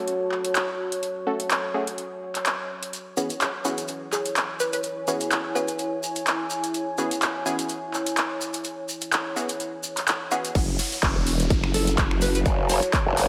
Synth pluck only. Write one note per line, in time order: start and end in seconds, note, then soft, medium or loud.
4.12 4.29 G#4 medium
4.60 4.68 B4 medium
4.73 4.80 B4 medium
5.55 6.22 B4 medium
11.74 11.91 A4 medium
12.22 12.30 B4 medium
12.35 12.42 B4 medium
12.70 12.86 C#5 medium